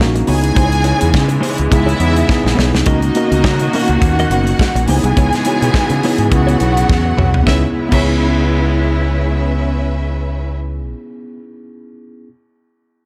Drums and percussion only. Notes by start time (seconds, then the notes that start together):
0.01 snare
0.16 closed hi-hat
0.27 open hi-hat
0.44 closed hi-hat
0.56 kick, closed hi-hat
0.72 closed hi-hat
0.84 closed hi-hat
1.01 closed hi-hat
1.14 kick, snare
1.29 closed hi-hat
1.43 open hi-hat
1.58 closed hi-hat
1.72 kick, closed hi-hat
1.89 closed hi-hat
2.00 closed hi-hat
2.16 closed hi-hat
2.29 kick, snare
2.46 snare
2.59 snare
2.75 snare
2.86 kick, closed hi-hat
3.02 closed hi-hat
3.15 closed hi-hat
3.32 closed hi-hat
3.44 kick, snare
3.59 closed hi-hat
3.73 open hi-hat
3.88 closed hi-hat
4.02 kick, closed hi-hat
4.19 closed hi-hat
4.31 closed hi-hat
4.47 closed hi-hat
4.59 kick, snare
4.76 closed hi-hat
4.88 open hi-hat
5.04 closed hi-hat
5.17 kick, closed hi-hat
5.33 snare, closed hi-hat
5.45 closed hi-hat
5.62 closed hi-hat
5.74 kick, snare
5.90 closed hi-hat
6.03 open hi-hat
6.18 closed hi-hat
6.32 kick, closed hi-hat
6.49 closed hi-hat
6.60 closed hi-hat
6.77 closed hi-hat
6.89 kick, snare
7.18 mid tom
7.34 floor tom
7.47 kick, snare
7.92 kick, crash